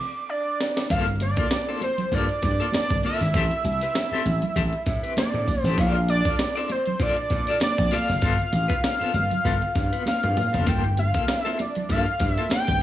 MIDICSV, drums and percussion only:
0, 0, Header, 1, 2, 480
1, 0, Start_track
1, 0, Tempo, 610998
1, 709, Time_signature, 4, 2, 24, 8
1, 10077, End_track
2, 0, Start_track
2, 0, Title_t, "Drums"
2, 476, Note_on_c, 9, 38, 90
2, 554, Note_off_c, 9, 38, 0
2, 605, Note_on_c, 9, 38, 94
2, 683, Note_off_c, 9, 38, 0
2, 710, Note_on_c, 9, 36, 100
2, 711, Note_on_c, 9, 42, 96
2, 788, Note_off_c, 9, 36, 0
2, 790, Note_off_c, 9, 42, 0
2, 840, Note_on_c, 9, 42, 32
2, 919, Note_off_c, 9, 42, 0
2, 944, Note_on_c, 9, 42, 67
2, 951, Note_on_c, 9, 62, 53
2, 1022, Note_off_c, 9, 42, 0
2, 1029, Note_off_c, 9, 62, 0
2, 1073, Note_on_c, 9, 42, 56
2, 1078, Note_on_c, 9, 36, 95
2, 1151, Note_off_c, 9, 42, 0
2, 1156, Note_off_c, 9, 36, 0
2, 1184, Note_on_c, 9, 42, 89
2, 1185, Note_on_c, 9, 38, 119
2, 1186, Note_on_c, 9, 63, 69
2, 1262, Note_off_c, 9, 42, 0
2, 1263, Note_off_c, 9, 38, 0
2, 1264, Note_off_c, 9, 63, 0
2, 1426, Note_on_c, 9, 62, 69
2, 1428, Note_on_c, 9, 42, 74
2, 1505, Note_off_c, 9, 62, 0
2, 1507, Note_off_c, 9, 42, 0
2, 1555, Note_on_c, 9, 64, 71
2, 1556, Note_on_c, 9, 42, 42
2, 1634, Note_off_c, 9, 64, 0
2, 1635, Note_off_c, 9, 42, 0
2, 1665, Note_on_c, 9, 36, 79
2, 1666, Note_on_c, 9, 62, 33
2, 1669, Note_on_c, 9, 42, 79
2, 1743, Note_off_c, 9, 36, 0
2, 1744, Note_off_c, 9, 62, 0
2, 1748, Note_off_c, 9, 42, 0
2, 1799, Note_on_c, 9, 42, 34
2, 1877, Note_off_c, 9, 42, 0
2, 1905, Note_on_c, 9, 42, 57
2, 1908, Note_on_c, 9, 36, 79
2, 1913, Note_on_c, 9, 38, 29
2, 1983, Note_off_c, 9, 42, 0
2, 1986, Note_off_c, 9, 36, 0
2, 1991, Note_off_c, 9, 38, 0
2, 2047, Note_on_c, 9, 42, 48
2, 2125, Note_off_c, 9, 42, 0
2, 2140, Note_on_c, 9, 63, 84
2, 2148, Note_on_c, 9, 42, 81
2, 2156, Note_on_c, 9, 38, 100
2, 2219, Note_off_c, 9, 63, 0
2, 2227, Note_off_c, 9, 42, 0
2, 2234, Note_off_c, 9, 38, 0
2, 2276, Note_on_c, 9, 42, 36
2, 2282, Note_on_c, 9, 36, 88
2, 2355, Note_off_c, 9, 42, 0
2, 2360, Note_off_c, 9, 36, 0
2, 2383, Note_on_c, 9, 46, 67
2, 2388, Note_on_c, 9, 63, 70
2, 2462, Note_off_c, 9, 46, 0
2, 2467, Note_off_c, 9, 63, 0
2, 2517, Note_on_c, 9, 42, 48
2, 2525, Note_on_c, 9, 38, 38
2, 2596, Note_off_c, 9, 42, 0
2, 2603, Note_off_c, 9, 38, 0
2, 2622, Note_on_c, 9, 42, 89
2, 2625, Note_on_c, 9, 36, 112
2, 2701, Note_off_c, 9, 42, 0
2, 2703, Note_off_c, 9, 36, 0
2, 2759, Note_on_c, 9, 42, 37
2, 2837, Note_off_c, 9, 42, 0
2, 2864, Note_on_c, 9, 62, 53
2, 2865, Note_on_c, 9, 42, 64
2, 2943, Note_off_c, 9, 62, 0
2, 2944, Note_off_c, 9, 42, 0
2, 2996, Note_on_c, 9, 42, 50
2, 3074, Note_off_c, 9, 42, 0
2, 3104, Note_on_c, 9, 42, 84
2, 3105, Note_on_c, 9, 63, 70
2, 3106, Note_on_c, 9, 38, 123
2, 3183, Note_off_c, 9, 42, 0
2, 3184, Note_off_c, 9, 38, 0
2, 3184, Note_off_c, 9, 63, 0
2, 3344, Note_on_c, 9, 42, 75
2, 3351, Note_on_c, 9, 62, 71
2, 3422, Note_off_c, 9, 42, 0
2, 3429, Note_off_c, 9, 62, 0
2, 3473, Note_on_c, 9, 42, 41
2, 3476, Note_on_c, 9, 64, 68
2, 3551, Note_off_c, 9, 42, 0
2, 3554, Note_off_c, 9, 64, 0
2, 3582, Note_on_c, 9, 36, 77
2, 3589, Note_on_c, 9, 42, 70
2, 3589, Note_on_c, 9, 62, 34
2, 3661, Note_off_c, 9, 36, 0
2, 3667, Note_off_c, 9, 62, 0
2, 3668, Note_off_c, 9, 42, 0
2, 3714, Note_on_c, 9, 42, 33
2, 3792, Note_off_c, 9, 42, 0
2, 3818, Note_on_c, 9, 42, 68
2, 3822, Note_on_c, 9, 36, 73
2, 3826, Note_on_c, 9, 38, 27
2, 3897, Note_off_c, 9, 42, 0
2, 3901, Note_off_c, 9, 36, 0
2, 3904, Note_off_c, 9, 38, 0
2, 3957, Note_on_c, 9, 42, 51
2, 4036, Note_off_c, 9, 42, 0
2, 4060, Note_on_c, 9, 42, 79
2, 4062, Note_on_c, 9, 63, 90
2, 4068, Note_on_c, 9, 38, 102
2, 4139, Note_off_c, 9, 42, 0
2, 4140, Note_off_c, 9, 63, 0
2, 4147, Note_off_c, 9, 38, 0
2, 4192, Note_on_c, 9, 42, 32
2, 4270, Note_off_c, 9, 42, 0
2, 4302, Note_on_c, 9, 36, 78
2, 4303, Note_on_c, 9, 46, 72
2, 4313, Note_on_c, 9, 63, 70
2, 4381, Note_off_c, 9, 36, 0
2, 4382, Note_off_c, 9, 46, 0
2, 4392, Note_off_c, 9, 63, 0
2, 4435, Note_on_c, 9, 42, 53
2, 4442, Note_on_c, 9, 38, 37
2, 4513, Note_off_c, 9, 42, 0
2, 4521, Note_off_c, 9, 38, 0
2, 4540, Note_on_c, 9, 36, 109
2, 4540, Note_on_c, 9, 42, 90
2, 4619, Note_off_c, 9, 36, 0
2, 4619, Note_off_c, 9, 42, 0
2, 4669, Note_on_c, 9, 42, 30
2, 4748, Note_off_c, 9, 42, 0
2, 4780, Note_on_c, 9, 42, 64
2, 4785, Note_on_c, 9, 62, 52
2, 4859, Note_off_c, 9, 42, 0
2, 4863, Note_off_c, 9, 62, 0
2, 4912, Note_on_c, 9, 36, 91
2, 4912, Note_on_c, 9, 42, 57
2, 4991, Note_off_c, 9, 36, 0
2, 4991, Note_off_c, 9, 42, 0
2, 5019, Note_on_c, 9, 42, 91
2, 5020, Note_on_c, 9, 63, 70
2, 5021, Note_on_c, 9, 38, 114
2, 5098, Note_off_c, 9, 42, 0
2, 5098, Note_off_c, 9, 63, 0
2, 5099, Note_off_c, 9, 38, 0
2, 5259, Note_on_c, 9, 42, 73
2, 5262, Note_on_c, 9, 62, 68
2, 5338, Note_off_c, 9, 42, 0
2, 5341, Note_off_c, 9, 62, 0
2, 5385, Note_on_c, 9, 42, 42
2, 5399, Note_on_c, 9, 64, 66
2, 5464, Note_off_c, 9, 42, 0
2, 5477, Note_off_c, 9, 64, 0
2, 5497, Note_on_c, 9, 36, 77
2, 5498, Note_on_c, 9, 42, 75
2, 5505, Note_on_c, 9, 62, 29
2, 5575, Note_off_c, 9, 36, 0
2, 5577, Note_off_c, 9, 42, 0
2, 5583, Note_off_c, 9, 62, 0
2, 5629, Note_on_c, 9, 42, 35
2, 5707, Note_off_c, 9, 42, 0
2, 5734, Note_on_c, 9, 42, 58
2, 5739, Note_on_c, 9, 36, 74
2, 5742, Note_on_c, 9, 38, 26
2, 5813, Note_off_c, 9, 42, 0
2, 5818, Note_off_c, 9, 36, 0
2, 5820, Note_off_c, 9, 38, 0
2, 5868, Note_on_c, 9, 42, 43
2, 5947, Note_off_c, 9, 42, 0
2, 5972, Note_on_c, 9, 42, 79
2, 5976, Note_on_c, 9, 63, 74
2, 5980, Note_on_c, 9, 38, 111
2, 6050, Note_off_c, 9, 42, 0
2, 6055, Note_off_c, 9, 63, 0
2, 6058, Note_off_c, 9, 38, 0
2, 6106, Note_on_c, 9, 42, 31
2, 6115, Note_on_c, 9, 36, 91
2, 6184, Note_off_c, 9, 42, 0
2, 6193, Note_off_c, 9, 36, 0
2, 6214, Note_on_c, 9, 46, 57
2, 6222, Note_on_c, 9, 63, 76
2, 6293, Note_off_c, 9, 46, 0
2, 6300, Note_off_c, 9, 63, 0
2, 6350, Note_on_c, 9, 42, 48
2, 6358, Note_on_c, 9, 38, 36
2, 6429, Note_off_c, 9, 42, 0
2, 6436, Note_off_c, 9, 38, 0
2, 6454, Note_on_c, 9, 42, 93
2, 6459, Note_on_c, 9, 36, 119
2, 6533, Note_off_c, 9, 42, 0
2, 6538, Note_off_c, 9, 36, 0
2, 6584, Note_on_c, 9, 42, 36
2, 6663, Note_off_c, 9, 42, 0
2, 6699, Note_on_c, 9, 42, 74
2, 6699, Note_on_c, 9, 62, 55
2, 6777, Note_off_c, 9, 42, 0
2, 6778, Note_off_c, 9, 62, 0
2, 6829, Note_on_c, 9, 42, 57
2, 6833, Note_on_c, 9, 36, 97
2, 6908, Note_off_c, 9, 42, 0
2, 6912, Note_off_c, 9, 36, 0
2, 6943, Note_on_c, 9, 42, 81
2, 6944, Note_on_c, 9, 38, 120
2, 6946, Note_on_c, 9, 63, 70
2, 7022, Note_off_c, 9, 42, 0
2, 7023, Note_off_c, 9, 38, 0
2, 7025, Note_off_c, 9, 63, 0
2, 7081, Note_on_c, 9, 42, 39
2, 7159, Note_off_c, 9, 42, 0
2, 7184, Note_on_c, 9, 42, 74
2, 7193, Note_on_c, 9, 62, 74
2, 7263, Note_off_c, 9, 42, 0
2, 7272, Note_off_c, 9, 62, 0
2, 7315, Note_on_c, 9, 42, 45
2, 7323, Note_on_c, 9, 64, 68
2, 7394, Note_off_c, 9, 42, 0
2, 7402, Note_off_c, 9, 64, 0
2, 7423, Note_on_c, 9, 36, 74
2, 7424, Note_on_c, 9, 62, 34
2, 7429, Note_on_c, 9, 42, 74
2, 7501, Note_off_c, 9, 36, 0
2, 7502, Note_off_c, 9, 62, 0
2, 7507, Note_off_c, 9, 42, 0
2, 7558, Note_on_c, 9, 42, 33
2, 7636, Note_off_c, 9, 42, 0
2, 7661, Note_on_c, 9, 42, 61
2, 7664, Note_on_c, 9, 36, 79
2, 7668, Note_on_c, 9, 38, 30
2, 7739, Note_off_c, 9, 42, 0
2, 7743, Note_off_c, 9, 36, 0
2, 7747, Note_off_c, 9, 38, 0
2, 7799, Note_on_c, 9, 42, 47
2, 7877, Note_off_c, 9, 42, 0
2, 7903, Note_on_c, 9, 63, 80
2, 7909, Note_on_c, 9, 42, 90
2, 7916, Note_on_c, 9, 38, 56
2, 7981, Note_off_c, 9, 63, 0
2, 7988, Note_off_c, 9, 42, 0
2, 7994, Note_off_c, 9, 38, 0
2, 8037, Note_on_c, 9, 42, 33
2, 8042, Note_on_c, 9, 48, 61
2, 8116, Note_off_c, 9, 42, 0
2, 8121, Note_off_c, 9, 48, 0
2, 8147, Note_on_c, 9, 45, 80
2, 8147, Note_on_c, 9, 46, 57
2, 8152, Note_on_c, 9, 63, 72
2, 8225, Note_off_c, 9, 46, 0
2, 8226, Note_off_c, 9, 45, 0
2, 8231, Note_off_c, 9, 63, 0
2, 8279, Note_on_c, 9, 42, 49
2, 8281, Note_on_c, 9, 43, 83
2, 8358, Note_off_c, 9, 42, 0
2, 8359, Note_off_c, 9, 43, 0
2, 8380, Note_on_c, 9, 42, 99
2, 8384, Note_on_c, 9, 36, 107
2, 8459, Note_off_c, 9, 42, 0
2, 8462, Note_off_c, 9, 36, 0
2, 8514, Note_on_c, 9, 42, 34
2, 8593, Note_off_c, 9, 42, 0
2, 8620, Note_on_c, 9, 42, 71
2, 8631, Note_on_c, 9, 62, 57
2, 8699, Note_off_c, 9, 42, 0
2, 8709, Note_off_c, 9, 62, 0
2, 8752, Note_on_c, 9, 42, 52
2, 8756, Note_on_c, 9, 36, 88
2, 8831, Note_off_c, 9, 42, 0
2, 8835, Note_off_c, 9, 36, 0
2, 8863, Note_on_c, 9, 42, 85
2, 8864, Note_on_c, 9, 38, 120
2, 8875, Note_on_c, 9, 63, 70
2, 8941, Note_off_c, 9, 42, 0
2, 8942, Note_off_c, 9, 38, 0
2, 8954, Note_off_c, 9, 63, 0
2, 9105, Note_on_c, 9, 42, 81
2, 9112, Note_on_c, 9, 62, 76
2, 9184, Note_off_c, 9, 42, 0
2, 9191, Note_off_c, 9, 62, 0
2, 9234, Note_on_c, 9, 42, 38
2, 9243, Note_on_c, 9, 64, 65
2, 9312, Note_off_c, 9, 42, 0
2, 9322, Note_off_c, 9, 64, 0
2, 9345, Note_on_c, 9, 36, 77
2, 9347, Note_on_c, 9, 42, 73
2, 9350, Note_on_c, 9, 62, 29
2, 9423, Note_off_c, 9, 36, 0
2, 9426, Note_off_c, 9, 42, 0
2, 9428, Note_off_c, 9, 62, 0
2, 9477, Note_on_c, 9, 42, 34
2, 9556, Note_off_c, 9, 42, 0
2, 9581, Note_on_c, 9, 42, 61
2, 9586, Note_on_c, 9, 36, 84
2, 9589, Note_on_c, 9, 38, 28
2, 9659, Note_off_c, 9, 42, 0
2, 9664, Note_off_c, 9, 36, 0
2, 9667, Note_off_c, 9, 38, 0
2, 9722, Note_on_c, 9, 42, 41
2, 9800, Note_off_c, 9, 42, 0
2, 9817, Note_on_c, 9, 63, 80
2, 9821, Note_on_c, 9, 42, 82
2, 9829, Note_on_c, 9, 38, 103
2, 9896, Note_off_c, 9, 63, 0
2, 9900, Note_off_c, 9, 42, 0
2, 9908, Note_off_c, 9, 38, 0
2, 9956, Note_on_c, 9, 42, 36
2, 9963, Note_on_c, 9, 36, 92
2, 10034, Note_off_c, 9, 42, 0
2, 10042, Note_off_c, 9, 36, 0
2, 10077, End_track
0, 0, End_of_file